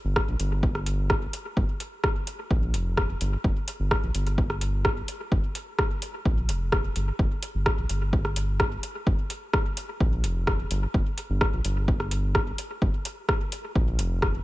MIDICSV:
0, 0, Header, 1, 3, 480
1, 0, Start_track
1, 0, Key_signature, -2, "minor"
1, 0, Tempo, 468750
1, 1606, Time_signature, 4, 2, 24, 8
1, 14785, End_track
2, 0, Start_track
2, 0, Title_t, "Analog synth bass"
2, 0, Program_c, 0, 38
2, 47, Note_on_c, 0, 31, 86
2, 200, Note_off_c, 0, 31, 0
2, 288, Note_on_c, 0, 34, 80
2, 364, Note_off_c, 0, 34, 0
2, 406, Note_on_c, 0, 31, 88
2, 1299, Note_off_c, 0, 31, 0
2, 1606, Note_on_c, 0, 31, 94
2, 1685, Note_off_c, 0, 31, 0
2, 2566, Note_on_c, 0, 34, 96
2, 2806, Note_on_c, 0, 29, 77
2, 2821, Note_off_c, 0, 34, 0
2, 3219, Note_off_c, 0, 29, 0
2, 3286, Note_on_c, 0, 31, 98
2, 3442, Note_off_c, 0, 31, 0
2, 3525, Note_on_c, 0, 31, 98
2, 3604, Note_off_c, 0, 31, 0
2, 3888, Note_on_c, 0, 31, 82
2, 4041, Note_off_c, 0, 31, 0
2, 4129, Note_on_c, 0, 34, 82
2, 4204, Note_off_c, 0, 34, 0
2, 4245, Note_on_c, 0, 31, 86
2, 5138, Note_off_c, 0, 31, 0
2, 5445, Note_on_c, 0, 31, 97
2, 5524, Note_off_c, 0, 31, 0
2, 6405, Note_on_c, 0, 34, 99
2, 6644, Note_on_c, 0, 29, 80
2, 6660, Note_off_c, 0, 34, 0
2, 7058, Note_off_c, 0, 29, 0
2, 7124, Note_on_c, 0, 31, 98
2, 7281, Note_off_c, 0, 31, 0
2, 7365, Note_on_c, 0, 31, 100
2, 7444, Note_off_c, 0, 31, 0
2, 7727, Note_on_c, 0, 31, 84
2, 7880, Note_off_c, 0, 31, 0
2, 7967, Note_on_c, 0, 34, 79
2, 8043, Note_off_c, 0, 34, 0
2, 8085, Note_on_c, 0, 31, 87
2, 8978, Note_off_c, 0, 31, 0
2, 9285, Note_on_c, 0, 31, 95
2, 9364, Note_off_c, 0, 31, 0
2, 10245, Note_on_c, 0, 34, 100
2, 10485, Note_on_c, 0, 29, 76
2, 10500, Note_off_c, 0, 34, 0
2, 10898, Note_off_c, 0, 29, 0
2, 10965, Note_on_c, 0, 31, 99
2, 11122, Note_off_c, 0, 31, 0
2, 11205, Note_on_c, 0, 31, 98
2, 11284, Note_off_c, 0, 31, 0
2, 11568, Note_on_c, 0, 31, 90
2, 11720, Note_off_c, 0, 31, 0
2, 11809, Note_on_c, 0, 34, 83
2, 11884, Note_off_c, 0, 34, 0
2, 11926, Note_on_c, 0, 31, 88
2, 12819, Note_off_c, 0, 31, 0
2, 13126, Note_on_c, 0, 31, 97
2, 13205, Note_off_c, 0, 31, 0
2, 14085, Note_on_c, 0, 34, 100
2, 14325, Note_on_c, 0, 29, 81
2, 14341, Note_off_c, 0, 34, 0
2, 14739, Note_off_c, 0, 29, 0
2, 14785, End_track
3, 0, Start_track
3, 0, Title_t, "Drums"
3, 165, Note_on_c, 9, 36, 113
3, 165, Note_on_c, 9, 37, 73
3, 267, Note_off_c, 9, 37, 0
3, 268, Note_off_c, 9, 36, 0
3, 405, Note_on_c, 9, 42, 66
3, 507, Note_off_c, 9, 42, 0
3, 645, Note_on_c, 9, 36, 114
3, 748, Note_off_c, 9, 36, 0
3, 768, Note_on_c, 9, 37, 35
3, 871, Note_off_c, 9, 37, 0
3, 885, Note_on_c, 9, 42, 78
3, 987, Note_off_c, 9, 42, 0
3, 1125, Note_on_c, 9, 36, 112
3, 1125, Note_on_c, 9, 37, 71
3, 1227, Note_off_c, 9, 37, 0
3, 1228, Note_off_c, 9, 36, 0
3, 1365, Note_on_c, 9, 42, 67
3, 1467, Note_off_c, 9, 42, 0
3, 1606, Note_on_c, 9, 36, 109
3, 1708, Note_off_c, 9, 36, 0
3, 1845, Note_on_c, 9, 42, 73
3, 1947, Note_off_c, 9, 42, 0
3, 2085, Note_on_c, 9, 37, 77
3, 2086, Note_on_c, 9, 36, 109
3, 2187, Note_off_c, 9, 37, 0
3, 2188, Note_off_c, 9, 36, 0
3, 2326, Note_on_c, 9, 42, 65
3, 2428, Note_off_c, 9, 42, 0
3, 2566, Note_on_c, 9, 36, 109
3, 2669, Note_off_c, 9, 36, 0
3, 2805, Note_on_c, 9, 42, 79
3, 2908, Note_off_c, 9, 42, 0
3, 3046, Note_on_c, 9, 36, 110
3, 3046, Note_on_c, 9, 37, 77
3, 3148, Note_off_c, 9, 36, 0
3, 3148, Note_off_c, 9, 37, 0
3, 3285, Note_on_c, 9, 42, 64
3, 3388, Note_off_c, 9, 42, 0
3, 3526, Note_on_c, 9, 36, 110
3, 3628, Note_off_c, 9, 36, 0
3, 3765, Note_on_c, 9, 42, 79
3, 3868, Note_off_c, 9, 42, 0
3, 4005, Note_on_c, 9, 36, 111
3, 4005, Note_on_c, 9, 37, 80
3, 4108, Note_off_c, 9, 36, 0
3, 4108, Note_off_c, 9, 37, 0
3, 4245, Note_on_c, 9, 42, 67
3, 4348, Note_off_c, 9, 42, 0
3, 4368, Note_on_c, 9, 42, 31
3, 4470, Note_off_c, 9, 42, 0
3, 4485, Note_on_c, 9, 36, 113
3, 4587, Note_off_c, 9, 36, 0
3, 4607, Note_on_c, 9, 37, 37
3, 4710, Note_off_c, 9, 37, 0
3, 4724, Note_on_c, 9, 42, 79
3, 4827, Note_off_c, 9, 42, 0
3, 4964, Note_on_c, 9, 37, 78
3, 4965, Note_on_c, 9, 36, 109
3, 5066, Note_off_c, 9, 37, 0
3, 5067, Note_off_c, 9, 36, 0
3, 5204, Note_on_c, 9, 42, 67
3, 5306, Note_off_c, 9, 42, 0
3, 5445, Note_on_c, 9, 36, 116
3, 5547, Note_off_c, 9, 36, 0
3, 5684, Note_on_c, 9, 42, 80
3, 5787, Note_off_c, 9, 42, 0
3, 5924, Note_on_c, 9, 37, 83
3, 5925, Note_on_c, 9, 36, 119
3, 6027, Note_off_c, 9, 36, 0
3, 6027, Note_off_c, 9, 37, 0
3, 6164, Note_on_c, 9, 42, 67
3, 6267, Note_off_c, 9, 42, 0
3, 6405, Note_on_c, 9, 36, 120
3, 6507, Note_off_c, 9, 36, 0
3, 6644, Note_on_c, 9, 42, 80
3, 6746, Note_off_c, 9, 42, 0
3, 6885, Note_on_c, 9, 36, 117
3, 6885, Note_on_c, 9, 37, 80
3, 6987, Note_off_c, 9, 36, 0
3, 6987, Note_off_c, 9, 37, 0
3, 7124, Note_on_c, 9, 42, 70
3, 7227, Note_off_c, 9, 42, 0
3, 7365, Note_on_c, 9, 36, 115
3, 7467, Note_off_c, 9, 36, 0
3, 7604, Note_on_c, 9, 42, 82
3, 7706, Note_off_c, 9, 42, 0
3, 7844, Note_on_c, 9, 36, 123
3, 7844, Note_on_c, 9, 37, 84
3, 7946, Note_off_c, 9, 37, 0
3, 7947, Note_off_c, 9, 36, 0
3, 8084, Note_on_c, 9, 42, 73
3, 8186, Note_off_c, 9, 42, 0
3, 8325, Note_on_c, 9, 36, 122
3, 8427, Note_off_c, 9, 36, 0
3, 8446, Note_on_c, 9, 37, 37
3, 8549, Note_off_c, 9, 37, 0
3, 8563, Note_on_c, 9, 42, 86
3, 8665, Note_off_c, 9, 42, 0
3, 8804, Note_on_c, 9, 36, 119
3, 8804, Note_on_c, 9, 37, 81
3, 8906, Note_off_c, 9, 37, 0
3, 8907, Note_off_c, 9, 36, 0
3, 9043, Note_on_c, 9, 42, 72
3, 9146, Note_off_c, 9, 42, 0
3, 9285, Note_on_c, 9, 36, 125
3, 9387, Note_off_c, 9, 36, 0
3, 9524, Note_on_c, 9, 42, 85
3, 9626, Note_off_c, 9, 42, 0
3, 9763, Note_on_c, 9, 37, 78
3, 9765, Note_on_c, 9, 36, 119
3, 9866, Note_off_c, 9, 37, 0
3, 9867, Note_off_c, 9, 36, 0
3, 10004, Note_on_c, 9, 42, 72
3, 10107, Note_off_c, 9, 42, 0
3, 10245, Note_on_c, 9, 36, 124
3, 10347, Note_off_c, 9, 36, 0
3, 10484, Note_on_c, 9, 42, 83
3, 10587, Note_off_c, 9, 42, 0
3, 10724, Note_on_c, 9, 37, 80
3, 10725, Note_on_c, 9, 36, 125
3, 10826, Note_off_c, 9, 37, 0
3, 10828, Note_off_c, 9, 36, 0
3, 10964, Note_on_c, 9, 42, 76
3, 11066, Note_off_c, 9, 42, 0
3, 11205, Note_on_c, 9, 36, 120
3, 11308, Note_off_c, 9, 36, 0
3, 11445, Note_on_c, 9, 42, 84
3, 11547, Note_off_c, 9, 42, 0
3, 11684, Note_on_c, 9, 37, 79
3, 11686, Note_on_c, 9, 36, 122
3, 11787, Note_off_c, 9, 37, 0
3, 11788, Note_off_c, 9, 36, 0
3, 11925, Note_on_c, 9, 42, 70
3, 12027, Note_off_c, 9, 42, 0
3, 12166, Note_on_c, 9, 36, 123
3, 12268, Note_off_c, 9, 36, 0
3, 12288, Note_on_c, 9, 37, 35
3, 12390, Note_off_c, 9, 37, 0
3, 12404, Note_on_c, 9, 42, 84
3, 12507, Note_off_c, 9, 42, 0
3, 12645, Note_on_c, 9, 37, 73
3, 12646, Note_on_c, 9, 36, 125
3, 12747, Note_off_c, 9, 37, 0
3, 12748, Note_off_c, 9, 36, 0
3, 12885, Note_on_c, 9, 42, 72
3, 12988, Note_off_c, 9, 42, 0
3, 13126, Note_on_c, 9, 36, 117
3, 13228, Note_off_c, 9, 36, 0
3, 13365, Note_on_c, 9, 42, 84
3, 13467, Note_off_c, 9, 42, 0
3, 13605, Note_on_c, 9, 36, 116
3, 13605, Note_on_c, 9, 37, 76
3, 13708, Note_off_c, 9, 36, 0
3, 13708, Note_off_c, 9, 37, 0
3, 13846, Note_on_c, 9, 42, 69
3, 13948, Note_off_c, 9, 42, 0
3, 14085, Note_on_c, 9, 36, 116
3, 14188, Note_off_c, 9, 36, 0
3, 14324, Note_on_c, 9, 42, 85
3, 14427, Note_off_c, 9, 42, 0
3, 14565, Note_on_c, 9, 36, 116
3, 14565, Note_on_c, 9, 37, 74
3, 14667, Note_off_c, 9, 36, 0
3, 14667, Note_off_c, 9, 37, 0
3, 14785, End_track
0, 0, End_of_file